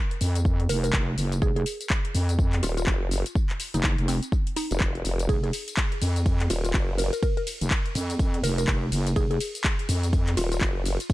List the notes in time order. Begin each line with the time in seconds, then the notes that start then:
0.11 closed hi-hat
0.21 F2, open hi-hat, tambourine
0.35 closed hi-hat, tambourine
0.45 kick, tambourine
0.60 closed hi-hat
0.69 F1 A#4, open hi-hat, tambourine
0.84 A#4, closed hi-hat, tambourine
0.93 F1, kick, clap, tambourine
1.18 F#1, open hi-hat, tambourine
1.32 closed hi-hat, tambourine
1.42 F1 G#4, kick, tambourine
1.56 G#4, closed hi-hat
1.66 open hi-hat, tambourine
1.81 closed hi-hat, tambourine
1.90 kick, clap, tambourine
2.05 closed hi-hat
2.14 F2, open hi-hat, tambourine
2.29 closed hi-hat, tambourine
2.39 kick, tambourine
2.53 clap, closed hi-hat
2.63 D#1 F4, open hi-hat, tambourine
2.77 F4, closed hi-hat, tambourine
2.87 F#1, kick, clap, tambourine
3.11 open hi-hat, tambourine
3.26 closed hi-hat, tambourine
3.35 kick, tambourine
3.50 clap, closed hi-hat
3.60 open hi-hat, tambourine
3.74 F1 D#4, closed hi-hat, tambourine
3.83 F#1 D#4, kick, clap, tambourine
3.98 F1, closed hi-hat
4.08 C4, open hi-hat, tambourine
4.23 closed hi-hat, tambourine
4.32 kick, tambourine
4.47 closed hi-hat
4.56 D#4, open hi-hat, tambourine
4.71 F1, closed hi-hat, tambourine
4.80 kick, clap, tambourine
4.95 closed hi-hat
5.05 F1, open hi-hat, tambourine
5.19 closed hi-hat, tambourine
5.29 F1 G#4, kick, ride, tambourine
5.43 G#4, closed hi-hat
5.53 open hi-hat, ride, tambourine
5.68 closed hi-hat, tambourine
5.77 kick, clap, ride, tambourine
5.92 closed hi-hat
6.02 F2, open hi-hat, ride, tambourine
6.16 closed hi-hat, tambourine
6.26 kick, ride, tambourine
6.40 clap, closed hi-hat
6.50 D#1 F4, open hi-hat, ride, tambourine
6.65 F4, closed hi-hat, tambourine
6.74 F#1, kick, clap, ride, tambourine
6.98 A#4, open hi-hat, ride, tambourine
7.13 A#4, closed hi-hat, tambourine
7.23 A#4, kick, ride, tambourine
7.37 A#4, closed hi-hat
7.47 open hi-hat, ride, tambourine
7.61 F1, closed hi-hat, tambourine
7.71 kick, clap, ride, tambourine
7.86 closed hi-hat
7.95 F2, open hi-hat, ride, tambourine
8.10 closed hi-hat, tambourine
8.19 kick, ride, tambourine
8.34 closed hi-hat
8.43 F1 A#4, open hi-hat, ride, tambourine
8.58 A#4, closed hi-hat, tambourine
8.68 F1, kick, clap, ride, tambourine
8.92 F#1, open hi-hat, ride, tambourine
9.07 closed hi-hat, tambourine
9.16 F1 G#4, kick, ride, tambourine
9.31 G#4, closed hi-hat
9.41 open hi-hat, ride, tambourine
9.55 closed hi-hat, tambourine
9.64 kick, clap, ride, tambourine
9.79 closed hi-hat
9.89 F2, open hi-hat, ride, tambourine
10.03 closed hi-hat, tambourine
10.13 kick, ride, tambourine
10.27 clap, closed hi-hat
10.37 D#1 F4, open hi-hat, ride, tambourine
10.52 F4, closed hi-hat, tambourine
10.61 F#1, kick, clap, ride, tambourine
10.86 open hi-hat, ride, tambourine
11.00 closed hi-hat, tambourine
11.10 kick, ride